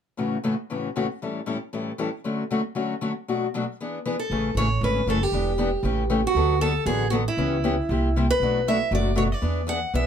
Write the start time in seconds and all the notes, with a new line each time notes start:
0.17 A2 C#3 E3 A3 C#4 F#4
0.44 A2 C#3 E3 A3 C#4 F#4
0.70 A2 C#3 E3 A3 C#4 F#4
0.96 A2 C#3 E3 A3 C#4 F#4
1.22 A2 E3 G3 C#4 E4 A4
1.46 A2 E3 G3 C#4 E4 A4
1.73 A2 E3 G3 C#4 E4 A4
1.98 A2 E3 G3 C#4 E4 A4
2.24 D3 F#3 A3 C#4 F#4
2.51 D3 F#3 A3 C#4 F#4
2.75 D3 F#3 A3 C#4 F#4
3.01 D3 F#3 A3 C#4 F#4
3.28 B2 F#3 A3 D4 F#4
3.54 B2 F#3 A3 D4 F#4
3.80 E3 B3 D4 G#4
4.05 E3 B3 D4 G#4
4.19 A4
4.30 A1 C#3 E3 A3 C#4 G#4
4.55 A1 C#3 E3 A3 C#4 G#4 C#5
4.81 G#1 C#3 E3 A3 C#4 G#4 B4
5.06 F#1 C#3 E3 A3 C#4 G#4 A4
5.23 G4
5.32 E1 E3 B3 D4 G4
5.58 E3 B3 D4 G4
5.83 A1 C#3 E3 A3 C#4 G4
6.10 C#3 E3 A3 C#4 G4
6.27 F#4
6.35 D2 D3 F#3 B3 F#4 A4
6.61 D3 F#3 B3 F#4 A4
6.86 A1 D3 F#3 B3 F#4 G#4 A4
7.10 D3 F#3 B3 F#4 A4
7.28 E4
7.37 C#2 C#3 E3 B3 C#4 G4
7.64 C#3 E3 B3 C#4 G4
7.89 C2 C3 G3 A#3 E4 G4
8.16 C3 G3 A#3 E4 G4
8.30 B4
8.40 B1 B2 F#3 A3 D4 F#4
8.68 B2 F#3 A3 D4 F#4 E5
8.91 F#1 B2 F#3 A3 D4 F#4 D5
9.16 B2 F#3 A3 D4 F#4 C#5
9.32 D5
9.41 E2 E3 B3 D4 G#4
9.67 E3 B3 D4 G#4 F#5
9.94 B1 E3 B3 D4 G#4 E5